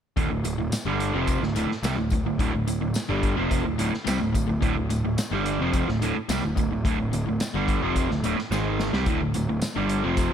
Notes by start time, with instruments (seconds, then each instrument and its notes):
0.16 picked electric bass D1, overdriven electric guitar D2 A2, kick, closed hi-hat
0.30 picked electric bass D1, overdriven electric guitar D2 A2
0.44 picked electric bass D1, overdriven electric guitar D2 A2, closed hi-hat, tambourine
0.57 picked electric bass D1, overdriven electric guitar D2 A2
0.72 muted picked electric bass stroke, muted overdriven electric guitar stroke, snare, closed hi-hat, tambourine
0.85 picked electric bass G1, overdriven electric guitar G2 D3 G3
1.00 closed hi-hat
1.13 picked electric bass F1, overdriven electric guitar F2 C3 F3
1.28 kick, closed hi-hat, tambourine
1.41 picked electric bass D1, overdriven electric guitar D2 A2, snare
1.55 picked electric bass D1, overdriven electric guitar D2 A2, closed hi-hat, tambourine
1.68 muted picked electric bass stroke, muted overdriven electric guitar stroke, snare
1.83 picked electric bass C2, overdriven electric guitar C3 G3, snare, closed hi-hat, tambourine
1.96 picked electric bass D1, overdriven electric guitar D2 A2
2.10 picked electric bass D1, overdriven electric guitar D2 A2, kick, closed hi-hat, tambourine
2.26 picked electric bass D1, overdriven electric guitar D2 A2
2.39 picked electric bass D1, overdriven electric guitar D2 A2, kick, closed hi-hat
2.54 picked electric bass D1, overdriven electric guitar D2 A2
2.67 picked electric bass D1, overdriven electric guitar D2 A2, closed hi-hat, tambourine
2.81 picked electric bass D1, overdriven electric guitar D2 A2
2.94 muted overdriven electric guitar stroke, muted picked electric bass stroke, snare, closed hi-hat, tambourine
3.09 picked electric bass G1, overdriven electric guitar G2 D3 G3
3.23 kick, closed hi-hat
3.36 picked electric bass F1, overdriven electric guitar F2 C3 F3
3.51 kick, closed hi-hat, tambourine
3.63 picked electric bass D1, overdriven electric guitar D2 A2
3.78 picked electric bass D1, overdriven electric guitar D2 A2, closed hi-hat, tambourine
3.92 muted overdriven electric guitar stroke, muted picked electric bass stroke, snare
4.04 picked electric bass C2, overdriven electric guitar C3 G3, snare, closed hi-hat, tambourine
4.19 picked electric bass D1, overdriven electric guitar D2 A2
4.33 picked electric bass D1, overdriven electric guitar D2 A2, kick, closed hi-hat, tambourine
4.47 picked electric bass D1, overdriven electric guitar D2 A2
4.61 picked electric bass D1, overdriven electric guitar D2 A2, kick, closed hi-hat
4.76 picked electric bass D1, overdriven electric guitar D2 A2
4.89 picked electric bass D1, overdriven electric guitar D2 A2, closed hi-hat, tambourine
5.04 picked electric bass D1, overdriven electric guitar D2 A2
5.18 muted picked electric bass stroke, muted overdriven electric guitar stroke, snare, closed hi-hat, tambourine
5.31 picked electric bass G1, overdriven electric guitar G2 D3 G3
5.46 closed hi-hat
5.59 picked electric bass F1, overdriven electric guitar F2 C3 F3
5.74 kick, closed hi-hat, tambourine
5.87 picked electric bass D1, overdriven electric guitar D2 A2, snare
6.01 picked electric bass D1, overdriven electric guitar D2 A2, closed hi-hat, tambourine
6.15 muted picked electric bass stroke, muted overdriven electric guitar stroke
6.29 picked electric bass C2, overdriven electric guitar C3 G3, snare, closed hi-hat, tambourine
6.42 picked electric bass D1, overdriven electric guitar D2 A2
6.56 picked electric bass D1, overdriven electric guitar D2 A2, kick, closed hi-hat, tambourine
6.71 picked electric bass D1, overdriven electric guitar D2 A2
6.85 picked electric bass D1, overdriven electric guitar D2 A2, kick, closed hi-hat
6.98 picked electric bass D1, overdriven electric guitar D2 A2
7.12 picked electric bass D1, overdriven electric guitar D2 A2, closed hi-hat, tambourine
7.26 picked electric bass D1, overdriven electric guitar D2 A2
7.40 muted overdriven electric guitar stroke, muted picked electric bass stroke, snare, closed hi-hat, tambourine
7.42 tambourine
7.54 picked electric bass G1, overdriven electric guitar G2 D3 G3
7.68 kick, closed hi-hat, tambourine
7.82 picked electric bass F1, overdriven electric guitar F2 C3 F3
7.96 kick, closed hi-hat, tambourine
8.10 picked electric bass D1, overdriven electric guitar D2 A2, snare
8.24 picked electric bass D1, overdriven electric guitar D2 A2, closed hi-hat, tambourine
8.37 muted picked electric bass stroke, muted overdriven electric guitar stroke, snare
8.51 picked electric bass G#1, overdriven electric guitar G#2 D#3 G#3, snare, tambourine
8.80 snare, tambourine
8.92 picked electric bass C2, overdriven electric guitar C3 G3, snare
9.06 picked electric bass D1, overdriven electric guitar D2 A2, kick, closed hi-hat
9.21 picked electric bass D1, overdriven electric guitar D2 A2
9.34 picked electric bass D1, overdriven electric guitar D2 A2, closed hi-hat, tambourine
9.49 picked electric bass D1, overdriven electric guitar D2 A2
9.62 muted picked electric bass stroke, muted overdriven electric guitar stroke, snare, closed hi-hat, tambourine
9.75 picked electric bass G1, overdriven electric guitar G2 D3 G3
9.89 closed hi-hat
10.03 picked electric bass F1, overdriven electric guitar F2 C3 F3
10.17 kick, closed hi-hat, tambourine